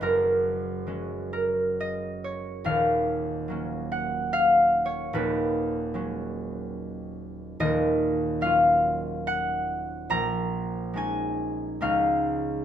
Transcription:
<<
  \new Staff \with { instrumentName = "Harp" } { \time 3/4 \key fis \major \tempo 4 = 72 ais'4. ais'8 dis''8 cis''8 | eis''4. fis''8 \tuplet 3/2 { eis''4 cis''8 } | b'2. | dis''4 eis''4 fis''4 |
ais''4 gis''4 eis''4 | }
  \new Staff \with { instrumentName = "Harp" } { \clef bass \time 3/4 \key fis \major <fis,, fis, gis>4 <fis gis cis'>2 | <dis,, dis,>4 <fis ais cis'>2 | <dis,, dis,>4 <fis gis cis'>2 | <dis,, dis,>4 <fis cis' eis'>2 |
ais,,4 <gis cis' dis'>4 <cis, gis cis' dis'>4 | }
>>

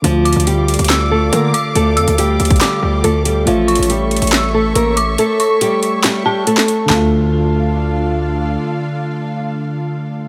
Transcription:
<<
  \new Staff \with { instrumentName = "Synth bell" } { \time 4/4 \key d \minor \tempo 4 = 140 r8 d'''4. e'''4. d'''8 | r8 e'''4. d'''4 r4 | r8 cis'''4. e'''4. d'''8 | r8 cis'''2 a''4. |
a''2. r4 | r1 | }
  \new Staff \with { instrumentName = "String section" } { \time 4/4 \key d \minor << { <d'' f'' d'''>1~ | <d'' f'' d'''>1 | <cis'' e'' cis'''>1~ | <cis'' e'' cis'''>1 |
<d' f' a' f''>1~ | <d' f' a' f''>1 | } \\ { a'1~ | a'1~ | a'1~ | a'1 |
r1 | r1 | } >> }
  \new Staff \with { instrumentName = "Nylon-string guitar" } { \time 4/4 \key d \minor <f f'>4 <g g'>4. <a a'>8 <bes bes'>8 r8 | <a a'>4 <g g'>4 <g g'>8 <g g'>8 <a a'>8 <g g'>8 | <f f'>4 <g g'>4. <a a'>8 <bes bes'>8 r8 | <a a'>4 <g g'>4 <g g'>8 <g g'>8 <a a'>4 |
a2. r4 | r1 | }
  \new Staff \with { instrumentName = "Tine electric piano" } { \time 4/4 \key d \minor <d a f'>1~ | <d a f'>2. <d a f'>4 | <a cis'' e''>1~ | <a cis'' e''>1 |
<d a f'>1~ | <d a f'>1 | }
  \new Staff \with { instrumentName = "808-style bass" } { \clef bass \time 4/4 \key d \minor d,8. d,4 d,4~ d,16 d8 r8 | d,8 f,16 d,8. d,8 r8 d,8 d,4 | a,,8. a,,4 a,,4~ a,,16 a,,4 | r1 |
d,1 | r1 | }
  \new DrumStaff \with { instrumentName = "Drums" } \drummode { \time 4/4 \tuplet 3/2 { hh16 r16 r16 hh16 hh16 hh16 } hh8 hh32 hh32 hh32 hh32 <hc sn>4 hh8 hh8 | hh8 hh16 hh16 hh8 hh32 hh32 <hh bd>32 hh32 <hc hh sn>4 hh8 hh8 | \tuplet 3/2 { hh16 r16 r16 hh16 hh16 hh16 } hh8 hh32 hh32 hh32 hh32 <hc hh sn>4 hh8 hh8 | hh8 hh8 hh8 hh8 <hc hh sn>4 hh16 <hc sn>16 hh8 |
<hc sn tomfh>4 r4 r4 r4 | r4 r4 r4 r4 | }
>>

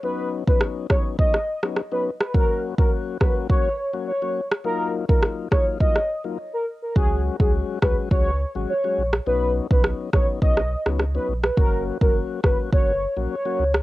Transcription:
<<
  \new Staff \with { instrumentName = "Soft synth lead" } { \time 4/4 \key fis \major \tempo 4 = 104 b'8 r16 b'16 r8 cis''16 r16 dis''8. r8 b'16 r16 b'16 | ais'8 r16 ais'16 r8 b'16 r16 cis''8. r16 cis''8. r16 | ais'8 r16 ais'16 r8 cis''16 r16 dis''8. r8 ais'16 r16 ais'16 | gis'8 r16 gis'16 r8 b'16 r16 cis''8. r16 cis''8. r16 |
b'8 r16 b'16 r8 cis''16 r16 dis''8. r8 b'16 r16 b'16 | ais'8 r16 ais'16 r8 b'16 r16 cis''8. r16 cis''8. r16 | }
  \new Staff \with { instrumentName = "Tonewheel organ" } { \time 4/4 \key fis \major <fis b cis' dis'>8. <fis b cis' dis'>8. <fis b cis' dis'>8 <fis b cis' dis'>16 r8 <fis b cis' dis'>16 r16 <fis b cis' dis'>16 r8 | <fis ais cis' fis'>8. <fis ais cis' fis'>8. <fis ais cis' fis'>8 <fis ais cis' fis'>16 r8 <fis ais cis' fis'>16 r16 <fis ais cis' fis'>16 r8 | <fis ais dis' eis'>8. <fis ais dis' eis'>8. <fis ais dis' eis'>8 <fis ais dis' eis'>16 r8 <fis ais dis' eis'>16 r4 | <fis gis cis' fis'>8. <fis gis cis' fis'>8. <fis gis cis' fis'>8 <fis gis cis' fis'>16 r8 <fis gis cis' fis'>16 r16 <fis gis cis' fis'>16 r8 |
<fis b cis' dis'>8. <fis b cis' dis'>8. <fis b cis' dis'>8 <fis b cis' dis'>16 r8 <fis b cis' dis'>16 r16 <fis b cis' dis'>16 r8 | <fis ais cis' fis'>8. <fis ais cis' fis'>8. <fis ais cis' fis'>8 <fis ais cis' fis'>16 r8 <fis ais cis' fis'>16 r16 <fis ais cis' fis'>16 r8 | }
  \new Staff \with { instrumentName = "Sub bass" } { \clef bass \time 4/4 \key fis \major r1 | r1 | r1 | cis,8. cis,8 r16 cis,16 r16 cis,8. gis,,16 r8 ais,,8 |
b,,8. b,,8 r16 ais,,16 r16 b,,8. cis,8. ais,,8 | fis,,8. fis,,8 r16 fis,,16 r16 fis,,8. ais,,16 r8 cis,8 | }
  \new DrumStaff \with { instrumentName = "Drums" } \drummode { \time 4/4 r8. bd16 ss8 <bd ss>8 bd16 ss8 ss16 ss8. ss16 | bd8. bd16 r8 <bd ss>8 bd4 r8. ss16 | r8. bd16 ss8 <bd ss>8 bd16 ss8. r4 | bd8. bd16 r8 <bd ss>8 bd4 r8. ss16 |
r8. bd16 ss8 <bd ss>8 bd16 ss8 ss16 ss8. ss16 | bd8. bd16 r8 <bd ss>8 bd4 r8. ss16 | }
>>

